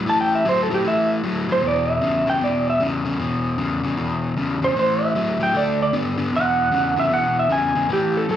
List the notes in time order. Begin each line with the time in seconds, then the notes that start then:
0.06 A2 E3 A5
0.21 G5
0.35 E5
0.45 A2 F#3 C5
0.63 A4
0.70 A2 F#3 G4
0.85 A2 E3 E5
1.24 A2 F#3
1.48 A2 F#3
1.52 C5
1.62 E2 B2
1.67 D5
1.90 E5
2.01 E2 C#3
2.26 E2 C#3 G5
2.41 E2 B2 D5
2.70 E5
2.80 E2 C#3
3.05 E2 C#3
3.19 E2 B2
3.58 E2 C#3
3.83 E2 C#3
3.98 E2 B2
4.37 E2 C#3
4.62 E2 C#3 C5
4.76 A2 E3 C5
5.03 E5
5.15 A2 F#3
5.40 A2 F#3 G5
5.54 D3 A3 D5
5.83 D5
5.93 D3 B3
6.18 D3 B3
6.32 E2 B2
6.36 F#5
6.71 E2 C#3
6.96 E2 C#3 E5
7.10 E2 B2 F#5
7.39 E5
7.49 E2 C#3 G#5
7.75 E2 C#3
7.89 A2 E3
7.93 G4
8.17 A4
8.29 A2 F#3 A4